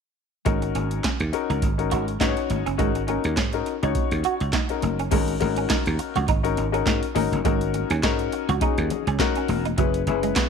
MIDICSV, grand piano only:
0, 0, Header, 1, 2, 480
1, 0, Start_track
1, 0, Key_signature, 5, "minor"
1, 0, Tempo, 582524
1, 378, Time_signature, 4, 2, 24, 8
1, 8644, End_track
2, 0, Start_track
2, 0, Title_t, "Grand piano"
2, 0, Program_c, 0, 0
2, 371, Note_on_c, 0, 61, 92
2, 374, Note_on_c, 0, 63, 82
2, 376, Note_on_c, 0, 66, 77
2, 377, Note_on_c, 0, 70, 90
2, 885, Note_off_c, 0, 61, 0
2, 886, Note_off_c, 0, 63, 0
2, 887, Note_off_c, 0, 66, 0
2, 888, Note_off_c, 0, 70, 0
2, 1093, Note_on_c, 0, 61, 86
2, 1095, Note_on_c, 0, 63, 84
2, 1100, Note_on_c, 0, 66, 79
2, 1103, Note_on_c, 0, 70, 98
2, 1351, Note_off_c, 0, 61, 0
2, 1351, Note_off_c, 0, 63, 0
2, 1354, Note_off_c, 0, 66, 0
2, 1356, Note_off_c, 0, 70, 0
2, 1467, Note_on_c, 0, 61, 83
2, 1470, Note_on_c, 0, 63, 76
2, 1473, Note_on_c, 0, 66, 68
2, 1475, Note_on_c, 0, 70, 87
2, 1722, Note_off_c, 0, 61, 0
2, 1723, Note_off_c, 0, 63, 0
2, 1724, Note_off_c, 0, 66, 0
2, 1726, Note_off_c, 0, 70, 0
2, 1817, Note_on_c, 0, 61, 95
2, 1819, Note_on_c, 0, 63, 88
2, 1821, Note_on_c, 0, 66, 87
2, 1823, Note_on_c, 0, 71, 79
2, 1877, Note_on_c, 0, 73, 95
2, 1880, Note_off_c, 0, 71, 0
2, 2167, Note_off_c, 0, 61, 0
2, 2168, Note_off_c, 0, 63, 0
2, 2169, Note_off_c, 0, 66, 0
2, 2197, Note_off_c, 0, 73, 0
2, 2290, Note_on_c, 0, 61, 90
2, 2292, Note_on_c, 0, 66, 90
2, 2293, Note_on_c, 0, 63, 89
2, 2297, Note_on_c, 0, 70, 94
2, 2471, Note_off_c, 0, 61, 0
2, 2473, Note_off_c, 0, 63, 0
2, 2473, Note_off_c, 0, 66, 0
2, 2475, Note_off_c, 0, 70, 0
2, 2531, Note_on_c, 0, 61, 83
2, 2537, Note_on_c, 0, 63, 74
2, 2538, Note_on_c, 0, 66, 74
2, 2541, Note_on_c, 0, 70, 90
2, 2790, Note_off_c, 0, 61, 0
2, 2792, Note_off_c, 0, 63, 0
2, 2793, Note_off_c, 0, 66, 0
2, 2794, Note_off_c, 0, 70, 0
2, 2909, Note_on_c, 0, 61, 77
2, 2914, Note_on_c, 0, 63, 80
2, 2915, Note_on_c, 0, 66, 73
2, 2917, Note_on_c, 0, 70, 91
2, 3071, Note_off_c, 0, 61, 0
2, 3074, Note_off_c, 0, 63, 0
2, 3074, Note_off_c, 0, 66, 0
2, 3075, Note_off_c, 0, 70, 0
2, 3152, Note_on_c, 0, 61, 83
2, 3152, Note_on_c, 0, 66, 71
2, 3154, Note_on_c, 0, 63, 76
2, 3157, Note_on_c, 0, 73, 91
2, 3656, Note_off_c, 0, 61, 0
2, 3656, Note_off_c, 0, 66, 0
2, 3657, Note_off_c, 0, 63, 0
2, 3658, Note_off_c, 0, 73, 0
2, 3869, Note_on_c, 0, 61, 69
2, 3872, Note_on_c, 0, 63, 71
2, 3872, Note_on_c, 0, 66, 64
2, 3874, Note_on_c, 0, 70, 83
2, 4122, Note_off_c, 0, 61, 0
2, 4124, Note_off_c, 0, 63, 0
2, 4124, Note_off_c, 0, 66, 0
2, 4125, Note_off_c, 0, 70, 0
2, 4210, Note_on_c, 0, 61, 88
2, 4213, Note_on_c, 0, 63, 72
2, 4215, Note_on_c, 0, 66, 74
2, 4217, Note_on_c, 0, 70, 100
2, 4392, Note_off_c, 0, 61, 0
2, 4393, Note_off_c, 0, 63, 0
2, 4394, Note_off_c, 0, 66, 0
2, 4395, Note_off_c, 0, 70, 0
2, 4449, Note_on_c, 0, 61, 81
2, 4451, Note_on_c, 0, 63, 74
2, 4452, Note_on_c, 0, 66, 77
2, 4455, Note_on_c, 0, 70, 101
2, 5058, Note_off_c, 0, 61, 0
2, 5059, Note_off_c, 0, 63, 0
2, 5060, Note_off_c, 0, 66, 0
2, 5062, Note_off_c, 0, 70, 0
2, 5301, Note_on_c, 0, 61, 87
2, 5303, Note_on_c, 0, 63, 83
2, 5303, Note_on_c, 0, 66, 77
2, 5307, Note_on_c, 0, 70, 102
2, 5467, Note_off_c, 0, 61, 0
2, 5468, Note_off_c, 0, 63, 0
2, 5468, Note_off_c, 0, 66, 0
2, 5470, Note_off_c, 0, 70, 0
2, 5540, Note_on_c, 0, 61, 82
2, 5540, Note_on_c, 0, 63, 86
2, 5542, Note_on_c, 0, 66, 81
2, 5547, Note_on_c, 0, 70, 98
2, 5798, Note_off_c, 0, 61, 0
2, 5798, Note_off_c, 0, 63, 0
2, 5799, Note_off_c, 0, 66, 0
2, 5802, Note_off_c, 0, 70, 0
2, 5890, Note_on_c, 0, 61, 91
2, 5892, Note_on_c, 0, 63, 92
2, 5893, Note_on_c, 0, 66, 84
2, 5896, Note_on_c, 0, 70, 100
2, 6071, Note_off_c, 0, 61, 0
2, 6072, Note_off_c, 0, 63, 0
2, 6073, Note_off_c, 0, 66, 0
2, 6074, Note_off_c, 0, 70, 0
2, 6135, Note_on_c, 0, 63, 80
2, 6136, Note_on_c, 0, 61, 90
2, 6138, Note_on_c, 0, 66, 82
2, 6140, Note_on_c, 0, 70, 102
2, 6486, Note_off_c, 0, 63, 0
2, 6487, Note_off_c, 0, 61, 0
2, 6488, Note_off_c, 0, 66, 0
2, 6489, Note_off_c, 0, 70, 0
2, 6614, Note_on_c, 0, 61, 95
2, 6620, Note_on_c, 0, 63, 90
2, 6620, Note_on_c, 0, 66, 85
2, 6624, Note_on_c, 0, 70, 102
2, 6966, Note_off_c, 0, 61, 0
2, 6969, Note_off_c, 0, 63, 0
2, 6969, Note_off_c, 0, 66, 0
2, 6971, Note_off_c, 0, 70, 0
2, 7096, Note_on_c, 0, 61, 80
2, 7096, Note_on_c, 0, 63, 70
2, 7100, Note_on_c, 0, 66, 70
2, 7103, Note_on_c, 0, 68, 90
2, 7447, Note_off_c, 0, 61, 0
2, 7447, Note_off_c, 0, 63, 0
2, 7449, Note_off_c, 0, 66, 0
2, 7450, Note_off_c, 0, 68, 0
2, 7575, Note_on_c, 0, 61, 97
2, 7576, Note_on_c, 0, 63, 86
2, 7578, Note_on_c, 0, 66, 96
2, 7581, Note_on_c, 0, 70, 108
2, 7926, Note_off_c, 0, 61, 0
2, 7927, Note_off_c, 0, 63, 0
2, 7928, Note_off_c, 0, 66, 0
2, 7929, Note_off_c, 0, 70, 0
2, 8054, Note_on_c, 0, 61, 81
2, 8055, Note_on_c, 0, 64, 74
2, 8059, Note_on_c, 0, 68, 82
2, 8061, Note_on_c, 0, 71, 96
2, 8233, Note_off_c, 0, 61, 0
2, 8234, Note_off_c, 0, 64, 0
2, 8236, Note_off_c, 0, 68, 0
2, 8237, Note_off_c, 0, 71, 0
2, 8301, Note_on_c, 0, 61, 79
2, 8302, Note_on_c, 0, 64, 76
2, 8305, Note_on_c, 0, 68, 75
2, 8307, Note_on_c, 0, 71, 96
2, 8644, Note_off_c, 0, 61, 0
2, 8644, Note_off_c, 0, 64, 0
2, 8644, Note_off_c, 0, 68, 0
2, 8644, Note_off_c, 0, 71, 0
2, 8644, End_track
0, 0, End_of_file